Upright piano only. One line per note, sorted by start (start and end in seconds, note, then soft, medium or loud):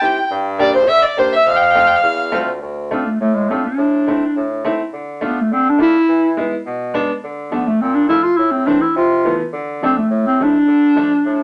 0.01 0.16 C4 medium
0.01 0.16 E4 medium
0.01 0.16 G4 medium
0.59 0.73 A#3 medium
0.59 0.74 D4 medium
0.59 0.74 G4 medium
1.17 1.32 A#3 medium
1.17 1.32 D4 medium
1.17 1.32 G4 medium
1.75 1.90 A3 medium
1.75 1.90 C4 medium
1.75 1.90 F4 medium
2.32 2.47 A3 medium
2.32 2.47 C4 medium
2.32 2.48 F4 medium
2.91 3.06 A3 medium
2.91 3.06 D4 medium
2.91 3.06 F4 medium
3.51 3.64 A3 medium
3.51 3.65 D4 soft
3.51 3.65 F4 medium
4.08 4.22 A3 medium
4.08 4.22 C4 medium
4.08 4.22 E4 medium
4.65 4.79 A3 medium
4.65 4.80 C4 medium
4.65 4.80 E4 medium
5.21 5.36 A3 medium
5.21 5.37 D4 medium
5.21 5.37 F4 medium
5.79 5.94 A3 medium
5.79 5.94 D4 medium
5.79 5.95 F4 medium
6.37 6.52 G#3 medium
6.37 6.52 B3 soft
6.37 6.53 E4 medium
6.94 7.09 G#3 medium
6.94 7.09 B3 medium
6.94 7.10 D4 medium
7.52 7.67 F3 medium
7.52 7.67 A3 medium
7.52 7.67 D4 medium
8.09 8.24 F3 medium
8.09 8.25 A3 medium
8.09 8.25 F4 medium
8.67 8.82 E3 medium
8.67 8.82 A3 medium
8.67 8.82 C4 medium
9.25 9.40 E3 medium
9.25 9.40 A3 medium
9.25 9.40 B3 medium
9.82 9.97 F3 medium
9.82 9.97 A3 medium
9.82 9.97 D4 medium
10.40 10.54 F3 medium
10.40 10.55 A3 medium
10.40 10.55 E4 medium
10.96 11.10 F3 medium
10.96 11.11 A3 medium
10.96 11.11 D4 medium